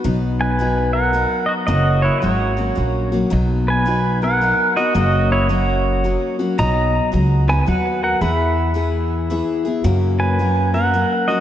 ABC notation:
X:1
M:3/4
L:1/8
Q:"Swing" 1/4=110
K:B
V:1 name="Pedal steel guitar"
z [Bg]2 [Af]2 [Fd] | [Fd] [Ec] [Fc]3 z | z [Bg]2 [Af]2 [Fd] | [Fd] [Ec] [Fc]3 z |
[da]2 z [Bg] [Bf] [Af] | [eb]4- [eb] z | z [Bg]2 [Af]2 [Fd] |]
V:2 name="Steel-string acoustic guitar"
[B,,F,B,DF]2 [F,B,DF]2 [F,B,DF]2 | [F,,C,F,A,CF]2 [F,A,CF] [F,A,CF] [F,A,CF] [F,A,CF] | [B,,F,B,DF]2 [F,B,DF] [B,DF] [F,B,DF] [B,DF] | [F,,C,F,A,CF]2 [F,A,CF]2 [F,A,CF] [F,A,CF] |
[B,,F,DF]2 [F,B,DF] [B,DF] [F,B,DF]2 | [E,B,EG]2 [E,B,EG]2 [E,B,EG] [B,EG] | [F,,C,F,A,CF]2 [F,A,CF] [F,A,CF] [F,A,CF] [F,A,CF] |]
V:3 name="Upright bass" clef=bass
B,,,6 | F,,,2 G,,,2 A,,,2 | B,,,6 | F,,,6 |
B,,,2 C,,2 D,,2 | E,,6 | F,,6 |]